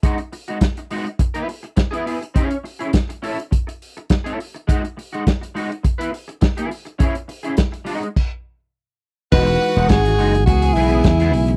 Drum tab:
CC |----------------|----------------|----------------|--------x-------|
HH |xxoxxxoxxxoxxxox|xxoxxxoxxxoxxxox|xxoxxxoxxxoxxxox|xxoxxxox--------|
SD |----o-------o---|----o-------o---|----o-------o---|----o-----------|
BD |o---o---o---o---|o---o---o---o---|o---o---o---o---|o---o---o-------|

CC |x---------------|
HH |-xoxxxoxxxoxxxox|
SD |----o-------oo--|
BD |o---o---o---o---|